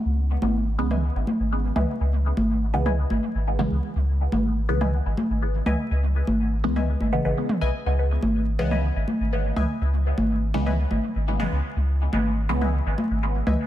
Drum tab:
T2 |-------o------o-|-------o-----o--|-------o------o-|-------o-----o--|
CG |---o------o---o-|---o-----o------|---o------o---o-|---o-----o------|

T2 |-------o------o-|-------o-----o--|-------o------o-|
CG |---o------o---o-|---o-----o------|---o------o---o-|